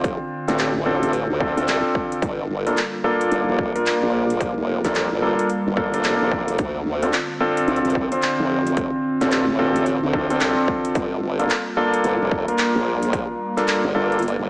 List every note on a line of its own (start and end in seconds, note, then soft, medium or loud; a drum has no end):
0.00 0.18 F1 loud
0.00 2.18 D3 medium
0.00 0.44 C4 medium
0.00 0.44 D4 medium
0.00 2.20 D4 medium
0.00 0.44 F4 medium
0.00 2.19 F4 medium
0.00 0.44 C5 medium
0.04 kick loud
0.04 closed hi-hat soft
0.48 1.27 A1 medium
0.48 0.71 C4 medium
0.48 0.71 D4 medium
0.48 0.71 F4 medium
0.48 0.71 A4 medium
0.48 clap soft
0.48 closed hi-hat medium
0.59 clap loud
0.59 closed hi-hat soft
0.86 1.10 C4 medium
0.86 1.10 D4 medium
0.86 1.10 F4 medium
0.86 1.10 A4 loud
1.03 closed hi-hat medium
1.13 closed hi-hat soft
1.30 1.66 D2 medium
1.40 1.55 C4 medium
1.40 1.55 D4 medium
1.40 1.55 F4 medium
1.40 1.55 A4 loud
1.40 kick loud
1.57 2.21 C4 medium
1.57 2.21 D4 medium
1.57 2.21 F4 medium
1.57 2.21 A4 loud
1.57 closed hi-hat medium
1.68 1.82 C2 loud
1.68 clap loud
1.68 closed hi-hat soft
1.95 kick loud
2.12 closed hi-hat medium
2.22 2.48 G1 medium
2.22 6.55 G3 medium
2.22 6.55 A#3 loud
2.22 14.50 F4 medium
2.22 kick loud
2.22 closed hi-hat soft
2.49 2.75 G1 medium
2.66 2.78 A#3 medium
2.66 2.78 D4 medium
2.66 2.78 F4 medium
2.66 2.78 A4 medium
2.66 closed hi-hat medium
2.77 clap loud
2.77 closed hi-hat soft
3.04 3.72 A#3 loud
3.04 3.72 D4 medium
3.04 3.72 F4 medium
3.04 3.72 A4 loud
3.21 closed hi-hat medium
3.31 3.46 G1 medium
3.31 closed hi-hat soft
3.48 3.73 F1 loud
3.59 kick loud
3.75 4.81 A#3 medium
3.75 4.81 D4 medium
3.75 4.81 F4 medium
3.75 4.81 A#4 medium
3.75 closed hi-hat medium
3.86 clap loud
3.86 closed hi-hat medium
4.03 4.55 A#1 loud
4.30 closed hi-hat medium
4.40 kick loud
4.40 closed hi-hat medium
4.57 4.82 F1 loud
4.84 5.09 F1 loud
4.84 5.07 A#3 medium
4.84 5.07 D4 medium
4.84 5.07 F4 medium
4.84 5.07 A4 medium
4.84 kick medium
4.84 clap soft
4.84 closed hi-hat medium
4.95 clap loud
4.95 closed hi-hat medium
5.12 5.21 G1 medium
5.22 5.37 G1 medium
5.22 5.47 A#3 medium
5.22 5.47 D4 medium
5.22 5.47 F4 medium
5.22 5.47 A4 medium
5.39 closed hi-hat medium
5.50 closed hi-hat medium
5.67 6.03 G1 medium
5.77 5.91 A#3 medium
5.77 5.91 D4 medium
5.77 5.91 F4 medium
5.77 5.91 A4 loud
5.77 kick loud
5.94 6.58 A#3 medium
5.94 6.58 D4 medium
5.94 6.58 F4 medium
5.94 6.58 A4 loud
5.94 closed hi-hat medium
6.04 6.18 F1 loud
6.04 clap loud
6.04 closed hi-hat medium
6.21 6.57 F1 medium
6.31 kick medium
6.48 closed hi-hat medium
6.58 6.84 D2 medium
6.58 10.91 D3 medium
6.58 10.91 C4 medium
6.58 kick loud
6.58 closed hi-hat medium
6.86 7.12 D2 loud
7.03 7.15 C4 medium
7.03 7.15 D4 medium
7.03 7.15 F4 medium
7.03 7.15 A4 medium
7.03 closed hi-hat medium
7.13 cross-stick medium
7.13 clap loud
7.13 closed hi-hat medium
7.40 8.08 C4 medium
7.40 8.08 D4 medium
7.40 8.08 F4 medium
7.40 8.08 A4 loud
7.57 closed hi-hat medium
7.68 7.82 D2 medium
7.68 closed hi-hat soft
7.76 closed hi-hat soft
7.85 8.09 C2 medium
7.85 closed hi-hat soft
7.90 closed hi-hat soft
7.95 kick loud
8.12 9.17 C4 medium
8.12 9.17 D4 medium
8.12 9.17 F4 medium
8.12 9.17 C5 medium
8.12 closed hi-hat medium
8.22 clap loud
8.22 closed hi-hat medium
8.39 8.91 F1 medium
8.67 closed hi-hat medium
8.77 kick loud
8.77 closed hi-hat medium
9.21 10.00 A1 medium
9.21 9.44 C4 medium
9.21 9.44 D4 medium
9.21 9.44 F4 medium
9.21 9.44 A4 medium
9.21 clap soft
9.21 closed hi-hat medium
9.31 cross-stick medium
9.31 clap loud
9.31 closed hi-hat medium
9.59 9.83 C4 medium
9.59 9.83 D4 medium
9.59 9.83 F4 medium
9.59 9.83 A4 loud
9.76 closed hi-hat medium
9.86 closed hi-hat medium
10.03 10.39 D2 medium
10.13 10.28 C4 medium
10.13 10.28 D4 medium
10.13 10.28 F4 medium
10.13 10.28 A4 loud
10.13 kick loud
10.30 10.94 C4 medium
10.30 10.94 D4 medium
10.30 10.94 F4 medium
10.30 10.94 A4 loud
10.30 cross-stick soft
10.30 closed hi-hat medium
10.40 10.55 C2 loud
10.40 clap loud
10.40 closed hi-hat medium
10.57 cross-stick medium
10.68 kick loud
10.85 closed hi-hat medium
10.95 11.21 G1 medium
10.95 14.50 G3 medium
10.95 14.50 A#3 medium
10.95 kick loud
10.95 closed hi-hat medium
11.23 11.48 G1 loud
11.39 11.51 A#3 medium
11.39 11.51 D4 medium
11.39 11.51 F4 medium
11.39 11.51 A4 medium
11.39 closed hi-hat medium
11.50 cross-stick soft
11.50 clap loud
11.50 closed hi-hat medium
11.77 12.44 A#3 loud
11.77 12.44 D4 medium
11.77 12.44 F4 medium
11.77 12.44 A4 loud
11.94 closed hi-hat medium
12.04 12.18 G1 loud
12.04 closed hi-hat medium
12.21 12.46 F1 loud
12.31 kick loud
12.48 13.53 A#3 medium
12.48 13.53 D4 medium
12.48 13.53 F4 medium
12.48 13.53 A#4 medium
12.48 closed hi-hat medium
12.58 clap loud
12.58 closed hi-hat medium
12.76 13.27 A#1 loud
13.03 closed hi-hat medium
13.13 kick loud
13.13 closed hi-hat medium
13.57 13.80 A#3 medium
13.57 13.80 D4 medium
13.57 13.80 F4 medium
13.57 13.80 A4 medium
13.57 clap soft
13.57 closed hi-hat medium
13.68 cross-stick soft
13.68 clap loud
13.68 closed hi-hat medium
13.84 13.93 G1 medium
13.95 14.36 G1 medium
13.95 14.19 A#3 medium
13.95 14.19 D4 medium
13.95 14.19 F4 medium
13.95 14.19 A4 loud
14.12 closed hi-hat soft
14.19 closed hi-hat soft
14.22 closed hi-hat medium
14.28 closed hi-hat soft
14.39 14.48 G1 medium